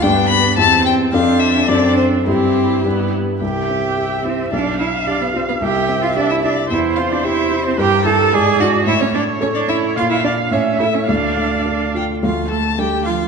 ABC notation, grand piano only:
X:1
M:2/4
L:1/8
Q:1/4=109
K:C
V:1 name="Grand piano"
[G,,B,DG]2 [E,,CEG]2 | [F,,CDA]2 [^F,,CDA]2 | [G,,CEG]2 [G,,B,DG]2 | C,, C G E |
B,,, D G F | C,, C G E | E,, C G E | [K:Dm] G,, [EG] ^G,, [DE] |
A,, A, A ^C | B,, [Dd] A,, [EA] | D,, A, A F | D,,2 [A,DA]2 |]